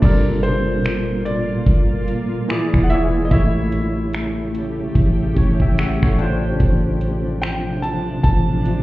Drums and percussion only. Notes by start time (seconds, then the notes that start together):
0.02 kick, closed hi-hat, crash
0.43 closed hi-hat
0.85 finger snap, closed hi-hat
1.26 closed hi-hat
1.66 kick, closed hi-hat
2.08 closed hi-hat
2.49 finger snap, closed hi-hat
2.74 finger snap, kick
2.90 closed hi-hat
3.31 kick, closed hi-hat
3.72 closed hi-hat
4.13 finger snap, closed hi-hat
4.55 closed hi-hat
4.95 kick, closed hi-hat
5.37 kick, closed hi-hat
5.60 kick
5.78 finger snap, closed hi-hat
6.03 finger snap, kick
6.19 closed hi-hat
6.60 kick, closed hi-hat
7.01 closed hi-hat
7.42 finger snap, closed hi-hat
7.84 closed hi-hat
8.24 kick, closed hi-hat
8.65 closed hi-hat